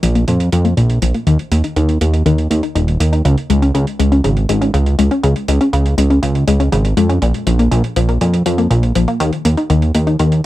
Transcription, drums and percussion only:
0.03 closed hi-hat medium
0.15 closed hi-hat soft
0.28 closed hi-hat medium
0.40 closed hi-hat soft
0.52 closed hi-hat medium
0.65 closed hi-hat soft
0.77 closed hi-hat medium
0.90 closed hi-hat soft
1.02 closed hi-hat medium
1.14 closed hi-hat soft
1.27 closed hi-hat medium
1.39 closed hi-hat soft
1.52 closed hi-hat medium
1.64 closed hi-hat soft
1.76 closed hi-hat medium
1.89 closed hi-hat soft
2.01 closed hi-hat medium
2.14 closed hi-hat soft
2.26 closed hi-hat medium
2.38 closed hi-hat soft
2.51 closed hi-hat medium
2.63 closed hi-hat soft
2.76 closed hi-hat medium
2.88 closed hi-hat soft
3.00 closed hi-hat medium
3.13 closed hi-hat soft
3.25 closed hi-hat medium
3.38 closed hi-hat soft
3.50 closed hi-hat medium
3.62 closed hi-hat soft
3.75 closed hi-hat medium
3.87 closed hi-hat soft
4.00 closed hi-hat medium
4.12 closed hi-hat soft
4.24 closed hi-hat medium
4.37 closed hi-hat soft
4.49 closed hi-hat medium
4.62 closed hi-hat soft
4.74 closed hi-hat medium
4.86 closed hi-hat soft
4.99 closed hi-hat medium
5.11 closed hi-hat soft
5.24 closed hi-hat medium
5.36 closed hi-hat soft
5.48 closed hi-hat medium
5.61 closed hi-hat soft
5.73 closed hi-hat medium
5.86 closed hi-hat soft
5.98 closed hi-hat medium
6.10 closed hi-hat soft
6.23 closed hi-hat medium
6.35 closed hi-hat soft
6.48 closed hi-hat medium
6.60 closed hi-hat soft
6.72 closed hi-hat medium
6.85 closed hi-hat soft
6.97 closed hi-hat medium
7.10 closed hi-hat soft
7.22 closed hi-hat medium
7.34 closed hi-hat soft
7.47 closed hi-hat medium
7.59 closed hi-hat soft
7.72 closed hi-hat medium
7.84 closed hi-hat soft
7.96 closed hi-hat medium
8.09 closed hi-hat soft
8.21 closed hi-hat medium
8.34 closed hi-hat soft
8.46 closed hi-hat medium
8.58 closed hi-hat soft
8.71 closed hi-hat medium
8.83 closed hi-hat soft
8.95 closed hi-hat medium
9.08 closed hi-hat soft
9.20 closed hi-hat medium
9.33 closed hi-hat soft
9.45 closed hi-hat medium
9.57 closed hi-hat soft
9.70 closed hi-hat medium
9.82 closed hi-hat soft
9.95 closed hi-hat medium
10.07 closed hi-hat soft
10.19 closed hi-hat medium
10.32 closed hi-hat soft

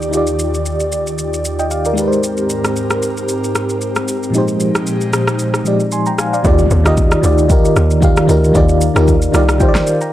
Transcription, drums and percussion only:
0.02 shaker soft
0.13 shaker medium
0.27 shaker medium
0.39 shaker medium
0.54 shaker medium
0.66 shaker medium
0.80 shaker medium
0.92 shaker medium
1.07 shaker medium
1.18 shaker medium
1.34 shaker medium
1.45 shaker medium
1.59 shaker soft
1.71 shaker medium
1.85 shaker medium
1.98 shaker medium
2.13 shaker soft
2.23 shaker medium
2.37 shaker soft
2.50 shaker medium
2.65 cross-stick medium
2.65 shaker medium
2.76 shaker medium
2.90 cross-stick medium
2.90 shaker medium
3.02 shaker medium
3.17 shaker medium
3.29 shaker medium
3.44 shaker medium
3.55 cross-stick medium
3.55 shaker medium
3.69 shaker medium
3.81 shaker medium
3.95 cross-stick medium
3.95 shaker medium
4.08 shaker loud
4.23 shaker soft
4.34 shaker medium
4.48 shaker medium
4.60 shaker medium
4.75 cross-stick medium
4.75 shaker medium
4.87 shaker medium
5.01 shaker medium
5.13 cross-stick loud
5.13 shaker medium
5.27 cross-stick loud
5.27 shaker medium
5.39 shaker medium
5.54 cross-stick medium
5.54 shaker medium
5.66 shaker medium
5.80 shaker soft
5.92 shaker medium
6.06 shaker medium
6.18 cross-stick medium
6.18 shaker medium
6.34 shaker medium
6.45 kick loud
6.45 shaker medium
6.58 shaker medium
6.71 shaker medium
6.86 cross-stick loud
6.86 shaker medium
6.97 kick medium
6.97 shaker medium
7.11 cross-stick loud
7.11 shaker medium
7.24 shaker loud
7.38 shaker medium
7.50 kick loud
7.50 shaker medium
7.65 shaker medium
7.76 cross-stick medium
7.76 shaker medium
7.90 shaker medium
8.02 kick loud
8.02 shaker medium
8.17 cross-stick loud
8.17 shaker medium
8.29 shaker loud
8.44 shaker medium
8.55 kick loud
8.55 shaker medium
8.69 shaker medium
8.81 shaker loud
8.96 cross-stick loud
8.96 shaker medium
9.08 kick medium
9.08 shaker medium
9.22 shaker medium
9.34 cross-stick loud
9.34 shaker loud
9.49 cross-stick loud
9.49 shaker medium
9.60 kick loud
9.60 shaker medium
9.75 cross-stick medium
9.75 snare medium
9.75 shaker medium
9.87 shaker medium
10.01 shaker medium

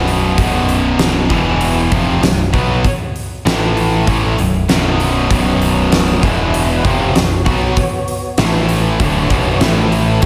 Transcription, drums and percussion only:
0.07 open hi-hat soft
0.38 kick loud
0.38 open hi-hat medium
0.69 open hi-hat soft
0.99 snare loud
0.99 open hi-hat medium
1.30 kick medium
1.30 open hi-hat soft
1.61 open hi-hat medium
1.92 kick loud
1.92 open hi-hat soft
2.23 snare loud
2.23 open hi-hat medium
2.54 kick medium
2.54 open hi-hat soft
2.85 kick loud
2.85 open hi-hat medium
3.16 open hi-hat soft
3.47 snare loud
3.47 open hi-hat medium
3.77 open hi-hat soft
4.07 kick loud
4.07 open hi-hat medium
4.38 open hi-hat soft
4.69 snare loud
4.69 open hi-hat medium
5.00 open hi-hat soft
5.31 kick loud
5.31 open hi-hat medium
5.62 open hi-hat medium
5.92 snare loud
5.92 open hi-hat medium
6.23 kick loud
6.23 open hi-hat soft
6.54 open hi-hat medium
6.85 kick loud
6.85 open hi-hat soft
7.16 snare loud
7.16 open hi-hat medium
7.46 kick medium
7.46 open hi-hat soft
7.77 kick loud
7.77 open hi-hat medium
8.08 open hi-hat soft
8.38 snare loud
8.38 open hi-hat medium
8.69 open hi-hat soft
9.00 kick loud
9.00 open hi-hat medium
9.30 kick loud
9.30 open hi-hat soft
9.61 snare loud
9.61 open hi-hat medium
9.92 open hi-hat soft
10.22 kick loud
10.22 open hi-hat medium

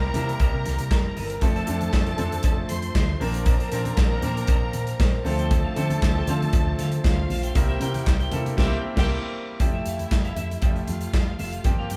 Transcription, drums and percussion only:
0.14 closed hi-hat medium
0.14 muted conga soft
0.14 high conga medium
0.14 low conga medium
0.28 closed hi-hat soft
0.28 high conga medium
0.40 kick loud
0.40 closed hi-hat medium
0.40 cowbell medium
0.40 low conga medium
0.66 snare soft
0.66 closed hi-hat medium
0.66 muted conga soft
0.66 high conga medium
0.78 closed hi-hat medium
0.91 kick loud
0.91 snare loud
0.91 clap medium
0.91 cowbell medium
1.17 open hi-hat medium
1.17 muted conga soft
1.17 high conga medium
1.30 closed hi-hat medium
1.41 kick loud
1.41 closed hi-hat medium
1.41 cowbell medium
1.41 low conga medium
1.56 closed hi-hat soft
1.67 closed hi-hat medium
1.67 muted conga soft
1.81 closed hi-hat soft
1.81 high conga medium
1.93 kick loud
1.93 snare loud
1.93 clap medium
1.93 cowbell medium
1.93 muted conga soft
2.07 closed hi-hat soft
2.18 closed hi-hat medium
2.18 muted conga soft
2.18 high conga medium
2.18 low conga medium
2.32 closed hi-hat soft
2.32 high conga medium
2.43 kick loud
2.43 closed hi-hat medium
2.43 cowbell medium
2.43 muted conga soft
2.43 low conga medium
2.69 closed hi-hat medium
2.69 high conga medium
2.82 closed hi-hat soft
2.95 kick loud
2.95 snare loud
2.95 clap medium
2.95 cowbell medium
3.21 open hi-hat medium
3.21 muted conga soft
3.21 high conga medium
3.34 closed hi-hat medium
3.46 kick loud
3.46 closed hi-hat medium
3.46 cowbell medium
3.46 muted conga soft
3.46 low conga medium
3.60 closed hi-hat soft
3.72 closed hi-hat medium
3.72 muted conga soft
3.85 closed hi-hat soft
3.85 high conga medium
3.97 kick loud
3.97 snare loud
3.97 clap medium
3.97 cowbell medium
4.22 closed hi-hat medium
4.22 muted conga soft
4.22 high conga medium
4.22 low conga medium
4.37 closed hi-hat soft
4.37 high conga medium
4.47 kick loud
4.47 closed hi-hat medium
4.47 cowbell medium
4.47 muted conga soft
4.47 low conga medium
4.73 closed hi-hat medium
4.73 muted conga soft
4.73 high conga medium
4.87 closed hi-hat medium
5.00 kick loud
5.00 snare loud
5.00 clap medium
5.00 cowbell medium
5.25 open hi-hat medium
5.25 muted conga soft
5.25 high conga medium
5.39 closed hi-hat medium
5.51 kick loud
5.51 closed hi-hat medium
5.51 cowbell medium
5.51 muted conga soft
5.51 low conga medium
5.76 closed hi-hat medium
5.76 muted conga soft
5.90 closed hi-hat medium
5.90 high conga medium
6.02 kick loud
6.02 snare loud
6.02 clap medium
6.02 cowbell medium
6.27 closed hi-hat medium
6.27 muted conga soft
6.27 high conga medium
6.27 low conga medium
6.42 closed hi-hat soft
6.42 high conga medium
6.53 kick loud
6.53 closed hi-hat medium
6.53 cowbell medium
6.53 muted conga soft
6.53 low conga medium
6.79 snare soft
6.79 closed hi-hat medium
6.79 muted conga soft
6.79 high conga medium
6.92 closed hi-hat soft
7.04 kick loud
7.04 snare loud
7.04 clap medium
7.04 cowbell medium
7.04 muted conga soft
7.30 open hi-hat medium
7.30 muted conga soft
7.30 high conga medium
7.43 closed hi-hat medium
7.55 kick loud
7.55 closed hi-hat medium
7.55 cowbell medium
7.55 muted conga soft
7.55 low conga medium
7.81 closed hi-hat medium
7.94 closed hi-hat medium
7.94 high conga medium
8.07 kick loud
8.07 snare loud
8.07 clap medium
8.07 cowbell medium
8.20 closed hi-hat soft
8.32 closed hi-hat medium
8.32 high conga medium
8.32 low conga medium
8.45 closed hi-hat soft
8.45 high conga medium
8.58 kick loud
8.58 snare loud
8.58 crash medium
8.97 kick loud
8.97 snare loud
8.97 crash medium
9.60 kick loud
9.60 closed hi-hat medium
9.60 cowbell medium
9.60 muted conga soft
9.60 low conga medium
9.86 closed hi-hat medium
9.99 closed hi-hat soft
9.99 high conga medium
10.11 kick loud
10.11 snare loud
10.11 clap medium
10.11 cowbell medium
10.25 closed hi-hat soft
10.36 closed hi-hat medium
10.36 muted conga soft
10.36 high conga medium
10.36 low conga medium
10.51 closed hi-hat soft
10.51 high conga medium
10.62 kick loud
10.62 closed hi-hat medium
10.62 cowbell medium
10.62 low conga medium
10.76 closed hi-hat soft
10.88 closed hi-hat medium
10.88 muted conga soft
10.88 high conga medium
11.01 closed hi-hat soft
11.14 kick loud
11.14 snare loud
11.14 clap medium
11.14 cowbell medium
11.14 muted conga soft
11.39 open hi-hat medium
11.39 high conga medium
11.53 closed hi-hat soft
11.64 kick loud
11.64 closed hi-hat medium
11.64 cowbell medium
11.64 muted conga soft
11.64 low conga medium
11.90 closed hi-hat medium
11.90 muted conga soft

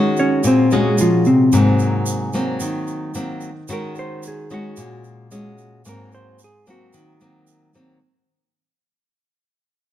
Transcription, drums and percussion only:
0.17 shaker soft
0.43 shaker medium
0.71 shaker soft
0.98 shaker medium
1.25 shaker soft
1.52 shaker medium
1.79 shaker soft
2.06 shaker medium
2.33 shaker soft
2.60 shaker medium
2.87 shaker soft
3.14 shaker medium
3.41 shaker soft
3.68 shaker medium
3.95 shaker soft
4.23 shaker medium
4.50 shaker soft
4.76 shaker soft
5.04 shaker soft
5.31 shaker medium
5.58 shaker soft
5.85 shaker medium
6.12 shaker soft
6.39 shaker medium
6.66 shaker soft
6.93 shaker medium
7.20 shaker soft
7.47 shaker medium
7.74 shaker soft

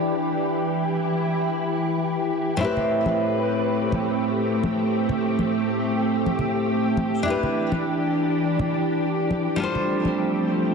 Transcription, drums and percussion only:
0.00 shaker medium
0.16 shaker soft
0.28 shaker medium
0.46 shaker soft
0.59 shaker medium
0.74 shaker soft
0.87 shaker medium
1.04 shaker soft
1.16 shaker medium
1.33 shaker soft
1.46 shaker soft
1.62 shaker soft
1.75 shaker medium
1.91 shaker soft
2.04 shaker medium
2.20 shaker soft
2.33 shaker medium
2.50 shaker soft
2.77 low conga medium
2.90 shaker medium
3.06 high conga medium
3.20 shaker soft
3.37 shaker soft
3.49 shaker medium
3.66 shaker soft
3.79 shaker medium
3.92 high conga medium
3.92 low conga medium
4.09 shaker medium
4.23 shaker soft
4.37 shaker medium
4.54 shaker soft
4.64 high conga medium
4.64 shaker medium
4.82 shaker soft
4.95 shaker soft
5.09 low conga medium
5.09 shaker soft
5.24 shaker medium
5.39 high conga medium
5.39 shaker soft
5.53 shaker medium
5.70 shaker soft
5.81 shaker medium
5.99 shaker soft
6.10 shaker soft
6.26 high conga medium
6.26 shaker soft
6.39 low conga medium
6.39 shaker medium
6.57 shaker soft
6.69 shaker soft
6.86 shaker soft
6.97 high conga medium
6.97 shaker medium
7.16 shaker soft
7.43 low conga medium
7.57 shaker medium
7.72 high conga medium
7.72 shaker soft
7.86 shaker soft
8.03 shaker soft
8.14 shaker medium
8.31 shaker soft
8.44 shaker soft
8.59 high conga medium
8.59 low conga medium
8.59 shaker soft
8.73 shaker medium
8.90 shaker soft
9.03 shaker medium
9.19 shaker soft
9.31 high conga medium
9.31 shaker medium
9.48 shaker soft
9.75 low conga medium
9.90 shaker medium
10.05 high conga medium
10.05 shaker soft
10.19 shaker soft
10.35 shaker soft
10.48 shaker medium
10.64 shaker soft

